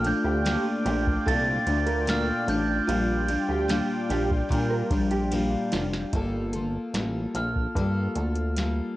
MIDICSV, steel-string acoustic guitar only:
0, 0, Header, 1, 2, 480
1, 0, Start_track
1, 0, Key_signature, -2, "major"
1, 0, Tempo, 811908
1, 1706, Time_signature, 4, 2, 24, 8
1, 5301, End_track
2, 0, Start_track
2, 0, Title_t, "Steel-string acoustic guitar"
2, 0, Program_c, 0, 25
2, 21, Note_on_c, 0, 65, 59
2, 34, Note_on_c, 0, 62, 51
2, 42, Note_on_c, 0, 57, 48
2, 261, Note_off_c, 0, 57, 0
2, 264, Note_off_c, 0, 65, 0
2, 265, Note_on_c, 0, 46, 80
2, 266, Note_off_c, 0, 62, 0
2, 268, Note_on_c, 0, 57, 91
2, 273, Note_on_c, 0, 62, 96
2, 279, Note_on_c, 0, 65, 97
2, 498, Note_off_c, 0, 65, 0
2, 505, Note_on_c, 0, 65, 54
2, 506, Note_off_c, 0, 46, 0
2, 508, Note_off_c, 0, 57, 0
2, 508, Note_off_c, 0, 62, 0
2, 515, Note_on_c, 0, 62, 57
2, 529, Note_on_c, 0, 57, 48
2, 742, Note_on_c, 0, 46, 63
2, 743, Note_off_c, 0, 57, 0
2, 746, Note_off_c, 0, 65, 0
2, 749, Note_off_c, 0, 62, 0
2, 750, Note_on_c, 0, 57, 60
2, 756, Note_on_c, 0, 62, 75
2, 764, Note_on_c, 0, 65, 77
2, 977, Note_off_c, 0, 65, 0
2, 984, Note_off_c, 0, 46, 0
2, 984, Note_on_c, 0, 65, 58
2, 988, Note_off_c, 0, 57, 0
2, 989, Note_off_c, 0, 62, 0
2, 996, Note_on_c, 0, 62, 61
2, 1004, Note_on_c, 0, 57, 53
2, 1218, Note_on_c, 0, 46, 77
2, 1220, Note_off_c, 0, 57, 0
2, 1222, Note_off_c, 0, 62, 0
2, 1225, Note_off_c, 0, 65, 0
2, 1227, Note_on_c, 0, 57, 89
2, 1229, Note_on_c, 0, 62, 80
2, 1237, Note_on_c, 0, 65, 83
2, 1451, Note_off_c, 0, 65, 0
2, 1458, Note_on_c, 0, 65, 57
2, 1462, Note_off_c, 0, 46, 0
2, 1464, Note_off_c, 0, 62, 0
2, 1467, Note_off_c, 0, 57, 0
2, 1471, Note_on_c, 0, 62, 53
2, 1481, Note_on_c, 0, 57, 48
2, 1699, Note_on_c, 0, 46, 79
2, 1702, Note_off_c, 0, 65, 0
2, 1705, Note_off_c, 0, 57, 0
2, 1705, Note_off_c, 0, 62, 0
2, 1708, Note_on_c, 0, 55, 88
2, 1712, Note_on_c, 0, 62, 91
2, 1714, Note_on_c, 0, 65, 88
2, 1933, Note_off_c, 0, 65, 0
2, 1940, Note_on_c, 0, 65, 58
2, 1942, Note_off_c, 0, 46, 0
2, 1946, Note_off_c, 0, 55, 0
2, 1947, Note_off_c, 0, 62, 0
2, 1954, Note_on_c, 0, 62, 59
2, 1962, Note_on_c, 0, 55, 49
2, 2178, Note_on_c, 0, 46, 92
2, 2179, Note_off_c, 0, 55, 0
2, 2183, Note_off_c, 0, 62, 0
2, 2183, Note_off_c, 0, 65, 0
2, 2186, Note_on_c, 0, 55, 89
2, 2190, Note_on_c, 0, 62, 97
2, 2193, Note_on_c, 0, 65, 102
2, 2414, Note_off_c, 0, 65, 0
2, 2421, Note_off_c, 0, 46, 0
2, 2421, Note_on_c, 0, 65, 63
2, 2423, Note_off_c, 0, 62, 0
2, 2425, Note_off_c, 0, 55, 0
2, 2430, Note_on_c, 0, 62, 54
2, 2441, Note_on_c, 0, 55, 51
2, 2654, Note_on_c, 0, 46, 80
2, 2657, Note_off_c, 0, 55, 0
2, 2663, Note_off_c, 0, 65, 0
2, 2665, Note_off_c, 0, 62, 0
2, 2665, Note_on_c, 0, 55, 83
2, 2672, Note_on_c, 0, 62, 73
2, 2676, Note_on_c, 0, 65, 80
2, 2892, Note_off_c, 0, 65, 0
2, 2899, Note_off_c, 0, 46, 0
2, 2899, Note_on_c, 0, 65, 60
2, 2900, Note_off_c, 0, 62, 0
2, 2905, Note_off_c, 0, 55, 0
2, 2907, Note_on_c, 0, 62, 60
2, 2918, Note_on_c, 0, 55, 58
2, 3140, Note_on_c, 0, 46, 80
2, 3141, Note_off_c, 0, 55, 0
2, 3142, Note_off_c, 0, 65, 0
2, 3146, Note_off_c, 0, 62, 0
2, 3148, Note_on_c, 0, 55, 88
2, 3153, Note_on_c, 0, 62, 93
2, 3157, Note_on_c, 0, 65, 100
2, 3376, Note_off_c, 0, 65, 0
2, 3382, Note_off_c, 0, 46, 0
2, 3383, Note_on_c, 0, 65, 59
2, 3386, Note_off_c, 0, 55, 0
2, 3387, Note_off_c, 0, 62, 0
2, 3394, Note_on_c, 0, 62, 62
2, 3408, Note_on_c, 0, 55, 57
2, 3619, Note_off_c, 0, 55, 0
2, 3624, Note_off_c, 0, 65, 0
2, 3626, Note_on_c, 0, 55, 73
2, 3629, Note_off_c, 0, 62, 0
2, 3632, Note_on_c, 0, 58, 79
2, 3636, Note_on_c, 0, 65, 80
2, 3642, Note_on_c, 0, 69, 82
2, 3853, Note_off_c, 0, 69, 0
2, 3860, Note_on_c, 0, 69, 55
2, 3865, Note_off_c, 0, 55, 0
2, 3867, Note_off_c, 0, 65, 0
2, 3868, Note_off_c, 0, 58, 0
2, 3874, Note_on_c, 0, 65, 47
2, 3882, Note_on_c, 0, 58, 51
2, 4103, Note_off_c, 0, 58, 0
2, 4103, Note_off_c, 0, 69, 0
2, 4104, Note_on_c, 0, 55, 61
2, 4109, Note_off_c, 0, 65, 0
2, 4110, Note_on_c, 0, 58, 69
2, 4117, Note_on_c, 0, 65, 68
2, 4125, Note_on_c, 0, 69, 66
2, 4342, Note_off_c, 0, 69, 0
2, 4344, Note_off_c, 0, 55, 0
2, 4347, Note_off_c, 0, 58, 0
2, 4349, Note_on_c, 0, 69, 48
2, 4351, Note_off_c, 0, 65, 0
2, 4358, Note_on_c, 0, 65, 48
2, 4369, Note_on_c, 0, 58, 40
2, 4587, Note_off_c, 0, 69, 0
2, 4588, Note_off_c, 0, 58, 0
2, 4590, Note_on_c, 0, 55, 68
2, 4591, Note_off_c, 0, 65, 0
2, 4595, Note_on_c, 0, 58, 70
2, 4602, Note_on_c, 0, 65, 79
2, 4607, Note_on_c, 0, 69, 83
2, 4824, Note_off_c, 0, 69, 0
2, 4828, Note_off_c, 0, 55, 0
2, 4830, Note_off_c, 0, 58, 0
2, 4831, Note_on_c, 0, 69, 56
2, 4834, Note_off_c, 0, 65, 0
2, 4841, Note_on_c, 0, 65, 51
2, 4851, Note_on_c, 0, 58, 40
2, 5063, Note_on_c, 0, 55, 60
2, 5065, Note_off_c, 0, 58, 0
2, 5068, Note_off_c, 0, 69, 0
2, 5072, Note_on_c, 0, 58, 62
2, 5073, Note_off_c, 0, 65, 0
2, 5080, Note_on_c, 0, 65, 58
2, 5086, Note_on_c, 0, 69, 67
2, 5299, Note_off_c, 0, 69, 0
2, 5301, Note_off_c, 0, 55, 0
2, 5301, Note_off_c, 0, 58, 0
2, 5301, Note_off_c, 0, 65, 0
2, 5301, End_track
0, 0, End_of_file